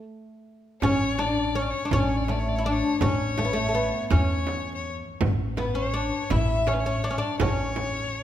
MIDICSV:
0, 0, Header, 1, 6, 480
1, 0, Start_track
1, 0, Tempo, 730816
1, 541, Time_signature, 6, 3, 24, 8
1, 5406, End_track
2, 0, Start_track
2, 0, Title_t, "Violin"
2, 0, Program_c, 0, 40
2, 536, Note_on_c, 0, 73, 83
2, 786, Note_on_c, 0, 74, 76
2, 796, Note_off_c, 0, 73, 0
2, 1025, Note_on_c, 0, 73, 84
2, 1035, Note_off_c, 0, 74, 0
2, 1065, Note_on_c, 0, 74, 65
2, 1075, Note_off_c, 0, 73, 0
2, 1119, Note_on_c, 0, 73, 83
2, 1129, Note_off_c, 0, 74, 0
2, 1263, Note_off_c, 0, 73, 0
2, 1267, Note_on_c, 0, 73, 61
2, 1315, Note_on_c, 0, 74, 66
2, 1325, Note_off_c, 0, 73, 0
2, 1369, Note_on_c, 0, 73, 64
2, 1379, Note_off_c, 0, 74, 0
2, 1423, Note_on_c, 0, 74, 64
2, 1433, Note_off_c, 0, 73, 0
2, 1472, Note_on_c, 0, 73, 64
2, 1482, Note_off_c, 0, 74, 0
2, 1516, Note_on_c, 0, 74, 64
2, 1526, Note_off_c, 0, 73, 0
2, 1570, Note_on_c, 0, 73, 60
2, 1579, Note_off_c, 0, 74, 0
2, 1632, Note_on_c, 0, 74, 66
2, 1642, Note_off_c, 0, 73, 0
2, 1675, Note_on_c, 0, 73, 63
2, 1685, Note_off_c, 0, 74, 0
2, 1732, Note_on_c, 0, 74, 67
2, 1742, Note_off_c, 0, 73, 0
2, 1782, Note_on_c, 0, 73, 83
2, 1792, Note_off_c, 0, 74, 0
2, 1969, Note_off_c, 0, 73, 0
2, 1973, Note_on_c, 0, 73, 87
2, 2672, Note_off_c, 0, 73, 0
2, 2692, Note_on_c, 0, 73, 73
2, 3091, Note_off_c, 0, 73, 0
2, 3117, Note_on_c, 0, 73, 62
2, 3231, Note_off_c, 0, 73, 0
2, 3658, Note_on_c, 0, 71, 66
2, 3775, Note_on_c, 0, 73, 75
2, 3785, Note_off_c, 0, 71, 0
2, 4140, Note_on_c, 0, 76, 74
2, 4150, Note_off_c, 0, 73, 0
2, 4386, Note_on_c, 0, 73, 70
2, 4396, Note_off_c, 0, 76, 0
2, 4423, Note_on_c, 0, 71, 54
2, 4433, Note_off_c, 0, 73, 0
2, 4467, Note_on_c, 0, 73, 67
2, 4476, Note_off_c, 0, 71, 0
2, 4716, Note_on_c, 0, 74, 64
2, 4726, Note_off_c, 0, 73, 0
2, 4854, Note_off_c, 0, 74, 0
2, 4858, Note_on_c, 0, 73, 80
2, 5406, Note_off_c, 0, 73, 0
2, 5406, End_track
3, 0, Start_track
3, 0, Title_t, "Oud"
3, 0, Program_c, 1, 24
3, 547, Note_on_c, 1, 61, 93
3, 778, Note_off_c, 1, 61, 0
3, 780, Note_on_c, 1, 62, 84
3, 1018, Note_off_c, 1, 62, 0
3, 1020, Note_on_c, 1, 61, 84
3, 1214, Note_off_c, 1, 61, 0
3, 1216, Note_on_c, 1, 62, 66
3, 1262, Note_off_c, 1, 62, 0
3, 1267, Note_on_c, 1, 61, 94
3, 1505, Note_on_c, 1, 57, 64
3, 1511, Note_off_c, 1, 61, 0
3, 1698, Note_on_c, 1, 64, 62
3, 1703, Note_off_c, 1, 57, 0
3, 1743, Note_off_c, 1, 64, 0
3, 1746, Note_on_c, 1, 62, 89
3, 1980, Note_off_c, 1, 62, 0
3, 1983, Note_on_c, 1, 61, 85
3, 2223, Note_on_c, 1, 57, 66
3, 2230, Note_off_c, 1, 61, 0
3, 2261, Note_off_c, 1, 57, 0
3, 2264, Note_on_c, 1, 59, 59
3, 2312, Note_off_c, 1, 59, 0
3, 2320, Note_on_c, 1, 57, 79
3, 2413, Note_off_c, 1, 57, 0
3, 2421, Note_on_c, 1, 57, 55
3, 2458, Note_off_c, 1, 57, 0
3, 2460, Note_on_c, 1, 59, 76
3, 2701, Note_on_c, 1, 61, 76
3, 2708, Note_off_c, 1, 59, 0
3, 3215, Note_off_c, 1, 61, 0
3, 3664, Note_on_c, 1, 59, 67
3, 3776, Note_on_c, 1, 61, 73
3, 3787, Note_off_c, 1, 59, 0
3, 3896, Note_off_c, 1, 61, 0
3, 3899, Note_on_c, 1, 62, 76
3, 4123, Note_off_c, 1, 62, 0
3, 4142, Note_on_c, 1, 64, 77
3, 4381, Note_off_c, 1, 64, 0
3, 4384, Note_on_c, 1, 61, 69
3, 4498, Note_off_c, 1, 61, 0
3, 4506, Note_on_c, 1, 61, 75
3, 4621, Note_off_c, 1, 61, 0
3, 4623, Note_on_c, 1, 62, 74
3, 4664, Note_off_c, 1, 62, 0
3, 4667, Note_on_c, 1, 61, 71
3, 4714, Note_off_c, 1, 61, 0
3, 4717, Note_on_c, 1, 62, 81
3, 4853, Note_off_c, 1, 62, 0
3, 4867, Note_on_c, 1, 61, 80
3, 5406, Note_off_c, 1, 61, 0
3, 5406, End_track
4, 0, Start_track
4, 0, Title_t, "Upright bass"
4, 0, Program_c, 2, 32
4, 540, Note_on_c, 2, 33, 83
4, 1122, Note_off_c, 2, 33, 0
4, 1261, Note_on_c, 2, 33, 86
4, 1843, Note_off_c, 2, 33, 0
4, 1985, Note_on_c, 2, 33, 83
4, 2565, Note_off_c, 2, 33, 0
4, 2706, Note_on_c, 2, 40, 78
4, 3286, Note_off_c, 2, 40, 0
4, 3424, Note_on_c, 2, 33, 88
4, 4004, Note_off_c, 2, 33, 0
4, 4146, Note_on_c, 2, 33, 91
4, 4725, Note_off_c, 2, 33, 0
4, 4865, Note_on_c, 2, 33, 81
4, 5406, Note_off_c, 2, 33, 0
4, 5406, End_track
5, 0, Start_track
5, 0, Title_t, "Frame drum"
5, 539, Note_on_c, 9, 64, 85
5, 605, Note_off_c, 9, 64, 0
5, 778, Note_on_c, 9, 64, 54
5, 844, Note_off_c, 9, 64, 0
5, 1256, Note_on_c, 9, 64, 84
5, 1321, Note_off_c, 9, 64, 0
5, 1500, Note_on_c, 9, 64, 62
5, 1565, Note_off_c, 9, 64, 0
5, 1976, Note_on_c, 9, 64, 90
5, 2041, Note_off_c, 9, 64, 0
5, 2218, Note_on_c, 9, 64, 69
5, 2283, Note_off_c, 9, 64, 0
5, 2696, Note_on_c, 9, 64, 93
5, 2761, Note_off_c, 9, 64, 0
5, 2934, Note_on_c, 9, 64, 63
5, 3000, Note_off_c, 9, 64, 0
5, 3420, Note_on_c, 9, 64, 95
5, 3485, Note_off_c, 9, 64, 0
5, 3660, Note_on_c, 9, 64, 70
5, 3726, Note_off_c, 9, 64, 0
5, 4139, Note_on_c, 9, 64, 94
5, 4205, Note_off_c, 9, 64, 0
5, 4380, Note_on_c, 9, 64, 77
5, 4446, Note_off_c, 9, 64, 0
5, 4858, Note_on_c, 9, 64, 105
5, 4924, Note_off_c, 9, 64, 0
5, 5098, Note_on_c, 9, 64, 74
5, 5163, Note_off_c, 9, 64, 0
5, 5406, End_track
6, 0, Start_track
6, 0, Title_t, "Tombak"
6, 543, Note_on_c, 9, 64, 79
6, 608, Note_off_c, 9, 64, 0
6, 780, Note_on_c, 9, 63, 60
6, 846, Note_off_c, 9, 63, 0
6, 1260, Note_on_c, 9, 64, 74
6, 1326, Note_off_c, 9, 64, 0
6, 1501, Note_on_c, 9, 63, 61
6, 1566, Note_off_c, 9, 63, 0
6, 1741, Note_on_c, 9, 62, 22
6, 1806, Note_off_c, 9, 62, 0
6, 1979, Note_on_c, 9, 64, 81
6, 2045, Note_off_c, 9, 64, 0
6, 2225, Note_on_c, 9, 63, 59
6, 2290, Note_off_c, 9, 63, 0
6, 2702, Note_on_c, 9, 64, 72
6, 2768, Note_off_c, 9, 64, 0
6, 2944, Note_on_c, 9, 63, 55
6, 3010, Note_off_c, 9, 63, 0
6, 3423, Note_on_c, 9, 64, 90
6, 3489, Note_off_c, 9, 64, 0
6, 3664, Note_on_c, 9, 63, 58
6, 3730, Note_off_c, 9, 63, 0
6, 4146, Note_on_c, 9, 64, 64
6, 4211, Note_off_c, 9, 64, 0
6, 4384, Note_on_c, 9, 63, 62
6, 4449, Note_off_c, 9, 63, 0
6, 4627, Note_on_c, 9, 62, 24
6, 4693, Note_off_c, 9, 62, 0
6, 4864, Note_on_c, 9, 64, 71
6, 4929, Note_off_c, 9, 64, 0
6, 5106, Note_on_c, 9, 63, 58
6, 5172, Note_off_c, 9, 63, 0
6, 5228, Note_on_c, 9, 62, 27
6, 5293, Note_off_c, 9, 62, 0
6, 5406, End_track
0, 0, End_of_file